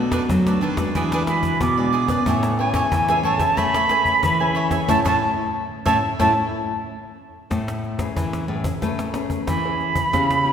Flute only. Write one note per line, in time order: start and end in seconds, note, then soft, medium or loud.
1.28 1.63 B5 medium
1.61 2.27 D6 loud
2.59 3.26 G#5 medium
3.24 3.59 A5 medium
3.58 4.56 B5 loud
4.89 4.99 A5 medium
5.06 5.16 A5 loud
5.86 5.97 A5 medium
6.20 6.31 A5 medium
9.48 10.53 B5 loud